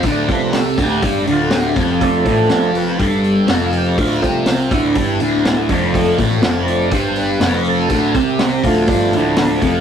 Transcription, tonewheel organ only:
X:1
M:4/4
L:1/8
Q:1/4=122
K:Ddor
V:1 name="Tonewheel organ"
d B A G2 F G z | A3 B A3 G | F3 E4 D- | D z2 d c B2 A- |
A G2 F2 E D z |]
V:2 name="Tonewheel organ"
z [F,A,D] z6 | [F,A,D]3 z4 z | z [F,A,D] z6 | [F,A,D]3 [F,A,D] z4 |
z3 [F,A,D]4- [F,A,D] |]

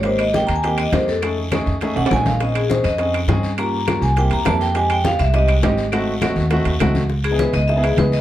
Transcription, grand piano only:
X:1
M:4/4
L:1/16
Q:1/4=204
K:Ab
V:1 name="Grand piano"
[B,CEG]3 z [B,CEG]3 z [B,CEG]3 z [B,CEG]3 z | [=A,^CE^G]3 z [A,CEG]3 z [A,CEG]3 z [A,CEG]3 z | [CDEA]3 z [CDEA]3 z [CDEA]3 z [CDEA]3 z | [B,DFG]3 z [B,DFG]3 z [B,C=EG]3 z [B,CEG]3 z |
[A,CEG]3 z [A,CEG]3 z [A,CEG]3 z [A,CEG]3 z | [=A,CE_G]3 z [A,CEG]3 z [A,CEG]3 z [A,CEG]3 z | [K:C#m] z3 [B,DEG]3 z2 [B,DEG] [B,DEG] [B,DEB] z [B,DEG]2 z2 |]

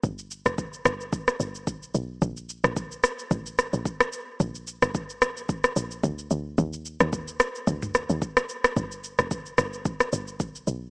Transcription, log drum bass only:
X:1
M:4/4
L:1/16
Q:"Swing 16ths" 1/4=110
K:Fmix
V:1 name="Log drum bass" clef=bass
G,,,3 F,,,3 G,,,4 G,,,2 =B,,,2 B,,,2 | B,,,3 B,,,3 z2 A,,,3 B,,, z4 | B,,,3 G,,,3 B,,,4 B,,,2 D,,2 D,,2 | E,,3 E,,3 z2 D,,3 E,, z4 |
G,,,3 F,,,3 G,,,4 G,,,2 =B,,,2 B,,,2 |]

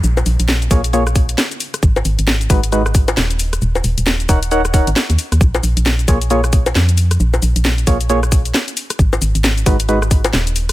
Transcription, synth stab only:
X:1
M:4/4
L:1/8
Q:"Swing 16ths" 1/4=134
K:Bbphr
V:1 name="Synth stab"
z3 [B,FAd] [B,FAd] z3 | z3 [A,EGc] [A,EGc] z3 | z3 [EBdg] [EBdg] [EBdg] z2 | z3 [B,FAd] [B,FAd] z3 |
z3 [B,FAd] [B,FAd] z3 | z3 [A,EGc] [A,EGc] z3 |]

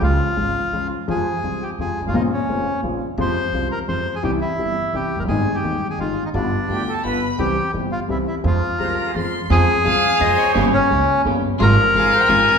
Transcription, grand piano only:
X:1
M:3/4
L:1/16
Q:1/4=171
K:Fm
V:1 name="Grand piano" clef=bass
[D,,D,F,A,F]2 z2 [A,,,A,,D,F,A,F]2 z2 [D,,D,F,A,F]2 z2 | [F,,C,F,A,F]2 z2 [C,,C,F,A,F]2 z2 [F,,C,F,A,F]2 z/2 G,,,/2 A,,,/2 =A,,,/2 | [B,,,B,,D,B,CF]2 z2 [F,,,F,,D,B,CF]2 z2 [B,,,B,,D,B,CF]2 z2 | [F,,C,F,A,F]2 z2 [C,,C,F,A,F]2 z2 [F,,C,F,A,F]2 z2 |
[C,,C,=E,G,=E]2 z2 [G,,,G,,C,E,G,E]2 z2 [C,,C,E,G,E]2 z/2 F,,,/2 _G,,,/2 =G,,,/2 | [A,,,A,,C,E,A,E]2 z2 [E,,,E,,C,E,A,E]2 z2 [A,,,A,,C,E,A,E]2 z2 | [G,,,G,,=D,G,=B,F]2 z2 [=D,,D,G,B,F]2 z2 [G,,,G,,D,G,B,F]2 z2 | [C,,C,=E,G,CG]2 z2 [G,,,G,,E,G,CG]2 z2 [C,,C,E,G,CG]2 z2 |
[F,,F,A,CA]2 z2 [C,,C,F,A,CA]2 z2 [F,,F,A,CA]2 z2 | [F,,F,A,CA]2 z2 [C,,C,F,A,CA]2 z2 [F,,F,A,CA]2 z2 | [G,,,G,,D,G,B,G]2 z2 [D,,D,G,B,G]2 z2 [G,,,G,,D,G,B,G]2 z2 | [A,,,A,,C,F,A,F]2 z2 [A,,,A,,C,F,A,F]2 z2 [A,,,A,,C,F,A,F]2 z2 |]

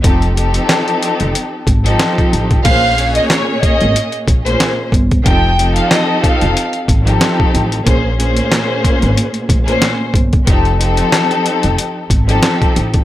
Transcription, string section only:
X:1
M:4/4
L:1/16
Q:"Swing 16ths" 1/4=92
K:Bbdor
V:1 name="String section"
[F,CEG=A]2 [F,CEGA]8 z [F,CEGA]4- [F,CEGA] | [B,,B,DAc]2 [B,,B,DAd]8 z [B,,B,DAc]3 z2 | [F,CEG=A]2 [F,CEGA]8 z [F,CEGA]4- [F,CEGA] | [B,,B,DAc]2 [B,,B,DAc]8 z [B,,B,DAc]3 z2 |
[F,CEG=A]2 [F,CEGA]8 z [F,CEGA]4- [F,CEGA] |]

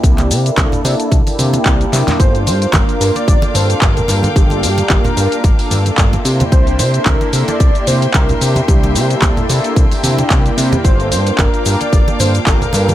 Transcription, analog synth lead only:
X:1
M:4/4
L:1/16
Q:"Swing 16ths" 1/4=111
K:Gdor
V:1 name="Analog synth lead"
z16 | c2 c2 B3 d3 c2 B4 | G8 z8 | c2 c2 B3 d3 c2 B4 |
G8 z8 | c2 c2 B3 d3 c2 B4 |]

